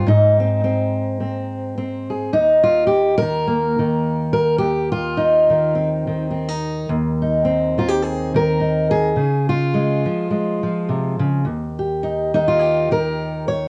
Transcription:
0.06 2.30 G#2 medium
0.06 2.32 D#4 medium
0.40 0.63 C4 soft
0.64 1.19 C4 soft
1.20 1.76 C4 soft
1.78 2.31 C4 soft
2.10 2.31 G#4 soft
2.33 4.60 D#2 medium
2.33 3.22 D#4 medium
2.64 2.86 F4 medium
2.87 3.17 G4 medium
3.18 4.32 A#4 loud
3.22 3.78 D#3 medium
3.47 4.58 A#3 soft
3.79 5.50 D#3 medium
4.33 4.58 A#4 medium
4.58 6.88 D#2 medium
4.58 4.91 G4 medium
4.92 5.74 F4 medium
5.17 6.30 D#4 medium
5.50 6.06 D#3 medium
5.75 6.29 C4 soft
6.07 7.77 D#3 medium
6.31 6.49 C4 soft
6.49 6.89 D#4 soft
6.89 9.17 D#2 medium
7.22 8.59 D#4 soft
7.45 9.13 C4 soft
7.78 8.33 D#3 medium
7.78 7.88 F4 medium
7.88 8.02 G4 medium
8.02 8.35 G#4 loud
8.34 9.16 D#3 medium
8.34 8.90 A#4 medium
8.60 9.14 D#4 soft
8.91 9.48 G#4 medium
9.16 10.06 C#3 medium
9.49 11.44 F4 medium
9.74 10.29 G#3 soft
10.05 10.62 F3 medium
10.30 11.44 G#3 soft
10.63 11.41 F3 medium
10.89 11.19 C3 medium
11.19 11.44 C#3 medium
11.45 13.68 D#2 medium
11.79 12.58 G4 soft
12.03 12.34 D#4 soft
12.34 12.90 D#3 medium
12.34 13.03 D#4 medium
12.48 12.91 F4 medium
12.59 13.48 G4 medium
12.91 13.68 D#3 medium
12.91 13.48 A#4 medium
13.48 13.68 C#5 medium

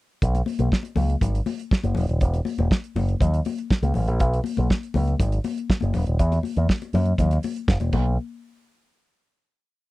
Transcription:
0.22 0.41 B1 medium
0.22 kick loud
0.22 closed hi-hat medium
0.35 closed hi-hat soft
0.35 muted conga soft
0.46 open hi-hat medium
0.46 high conga medium
0.59 0.68 B1 medium
0.59 closed hi-hat soft
0.59 high conga medium
0.72 kick medium
0.72 snare medium
0.72 muted conga soft
0.83 closed hi-hat soft
0.83 muted conga soft
0.96 1.14 C#2 medium
0.96 open hi-hat medium
0.96 high conga medium
0.96 low conga medium
1.10 closed hi-hat soft
1.21 1.40 G#1 medium
1.21 kick loud
1.21 closed hi-hat medium
1.21 muted conga soft
1.21 low conga medium
1.35 closed hi-hat soft
1.46 open hi-hat medium
1.46 high conga medium
1.60 closed hi-hat soft
1.71 kick loud
1.71 snare loud
1.84 1.93 F#1 medium
1.84 closed hi-hat soft
1.84 muted conga soft
1.84 high conga medium
1.95 2.05 E1 loud
1.95 open hi-hat medium
1.95 low conga medium
2.09 2.18 D#1 medium
2.09 closed hi-hat soft
2.21 2.40 E1 medium
2.21 kick loud
2.21 closed hi-hat medium
2.21 muted conga soft
2.34 closed hi-hat soft
2.34 muted conga soft
2.45 open hi-hat medium
2.45 high conga medium
2.58 2.68 E1 medium
2.58 closed hi-hat soft
2.58 high conga medium
2.71 kick loud
2.71 snare loud
2.84 closed hi-hat soft
2.96 3.14 F#1 medium
2.96 open hi-hat medium
2.96 high conga medium
2.96 low conga medium
3.09 closed hi-hat soft
3.21 3.39 D#2 medium
3.21 kick loud
3.21 closed hi-hat medium
3.21 muted conga soft
3.21 low conga medium
3.34 closed hi-hat soft
3.45 open hi-hat medium
3.45 high conga medium
3.58 closed hi-hat soft
3.71 kick loud
3.71 snare loud
3.71 muted conga soft
3.82 3.92 C#2 medium
3.82 closed hi-hat soft
3.82 high conga medium
3.94 4.08 A1 medium
3.94 open hi-hat medium
3.94 low conga medium
4.08 4.21 A#1 medium
4.08 closed hi-hat soft
4.20 4.39 B1 loud
4.20 kick loud
4.20 closed hi-hat medium
4.20 muted conga soft
4.34 closed hi-hat soft
4.44 open hi-hat medium
4.44 high conga medium
4.57 4.67 B1 medium
4.57 closed hi-hat soft
4.57 high conga medium
4.70 kick medium
4.70 snare loud
4.83 closed hi-hat soft
4.94 5.13 C#2 medium
4.94 open hi-hat medium
4.94 high conga medium
4.94 low conga medium
5.08 closed hi-hat soft
5.20 5.38 G#1 medium
5.20 kick loud
5.20 closed hi-hat medium
5.20 muted conga soft
5.20 low conga medium
5.32 closed hi-hat soft
5.44 open hi-hat medium
5.44 high conga medium
5.58 closed hi-hat soft
5.70 kick loud
5.70 snare loud
5.81 5.91 F#1 medium
5.81 closed hi-hat soft
5.81 muted conga soft
5.81 high conga medium
5.94 6.04 E1 loud
5.94 open hi-hat medium
5.94 low conga medium
6.07 6.16 D#1 medium
6.07 closed hi-hat soft
6.19 6.38 E2 loud
6.19 kick medium
6.19 closed hi-hat medium
6.19 muted conga soft
6.32 closed hi-hat soft
6.32 muted conga soft
6.43 open hi-hat medium
6.43 high conga medium
6.57 6.66 E2 medium
6.57 closed hi-hat soft
6.57 high conga medium
6.69 kick medium
6.69 snare loud
6.82 closed hi-hat soft
6.82 muted conga soft
6.93 7.12 F#2 medium
6.93 open hi-hat medium
6.93 high conga medium
6.93 low conga medium
7.06 closed hi-hat soft
7.18 7.37 D#2 medium
7.18 kick loud
7.18 closed hi-hat medium
7.18 muted conga soft
7.18 low conga medium
7.31 closed hi-hat soft
7.31 muted conga soft
7.43 open hi-hat medium
7.43 high conga medium
7.56 closed hi-hat soft
7.68 7.77 F#1 medium
7.68 kick loud
7.68 snare loud
7.80 7.89 E1 medium
7.80 closed hi-hat soft
7.80 high conga medium
7.92 8.16 B1 loud
7.92 kick loud
7.92 crash medium
7.92 high conga medium

